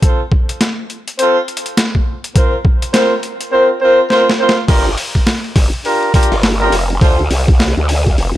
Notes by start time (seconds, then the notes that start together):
0.02 C4 F4 A4 C5, kick, closed hi-hat
0.32 kick
0.49 closed hi-hat
0.61 snare, closed hi-hat
0.90 closed hi-hat
1.08 closed hi-hat
1.19 C4 F4 A4 C5, closed hi-hat
1.48 closed hi-hat
1.57 closed hi-hat
1.66 closed hi-hat
1.77 snare, closed hi-hat
1.95 kick
2.24 closed hi-hat
2.36 C4 F4 A#4 C5, kick, closed hi-hat
2.65 kick
2.82 closed hi-hat
2.94 C4 F4 A#4 C5, snare, closed hi-hat
3.23 closed hi-hat
3.41 closed hi-hat
3.52 C4 F4 A#4 C5
3.81 C4 F4 A#4 C5
4.10 C4 F4 A#4 C5, snare
4.29 snare
4.39 C4 F4 A#4 C5
4.49 snare
4.68 G1 D4 F4 G4 A#4, kick, open hi-hat, crash
4.86 open hi-hat
4.98 open hi-hat
5.15 kick, open hi-hat
5.27 snare, open hi-hat
5.44 open hi-hat
5.56 G1, kick, open hi-hat
5.73 open hi-hat
5.85 D4 F4 G4 A#4, open hi-hat
6.03 open hi-hat
6.14 D4 F4 G4 A#4, kick, open hi-hat
6.23 closed hi-hat
6.31 G1, open hi-hat
6.43 snare, open hi-hat
6.61 D4 F4 G4 A#4, open hi-hat
6.72 F1, open hi-hat
6.90 open hi-hat
7.01 D2 D4 F4 A4 C5, kick, open hi-hat
7.19 open hi-hat
7.30 C2, open hi-hat
7.48 kick, open hi-hat
7.60 snare, open hi-hat
7.77 D2, open hi-hat
7.89 open hi-hat
8.06 kick, open hi-hat
8.18 F1, open hi-hat